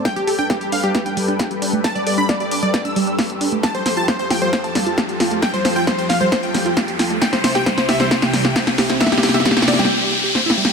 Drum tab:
HH |x-----x-----o-----x-----x-----x-----o-----x-----x-----x-----o-----x-----x-----x-----o-----x-----|x-----x-----o-----x-----x-----x-----o-----x-----x-----x-----o-----x-----o-----x-----o-----x-----|x-----x-----o-----x-----x-----x-----o-----x-----x-----x-----o-----x-----x-----x-----o-----x-----|x-----x-----o-----x-----x-----x-----o-----x-----x-----x-----o-----x-----x-----x-----o-----x-----|
SD |o-----------------------o-----------------------o-----------------------o-----------------------|o-----------------------o-----------------------o-----------------------o-----------------------|o-----------o-----------o-----------o-----------o-----------o-----------o-----------o-----------|o-----------o-----------o-----------o-----------o-----------o-----------o-----------o-----------|
BD |o-----------------------o-----------------------o-----------------------o-----------------------|o-----------------------o-----------------------o-----------------------o-----------------------|o-----------------------o-----------------------o-----------------------o-----------------------|o-----------------------o-----------------------o-----------------------o-----------------------|

HH |x-----x-----o-----x-----x-----x-----o-----x-----x-----x-----o-----x-----x-----x-----o-----x-----|x-----x-----o-----x-----x-----x-----o-----x-----------------------------------------------------|
SD |o-----o-----o-----o-----o-----o-----o-----o-----o-----o-----o-----o-----o-----o-----o-----o-----|o--o--o--o--o--o--o--o--o--o--o--o--o--o--o--o--------------------------o-------o-------o-------|
BD |o-----------------------o-----------------------o-----------------------o-----------------------|o-----------------------o-----------------------------------------------------------------------|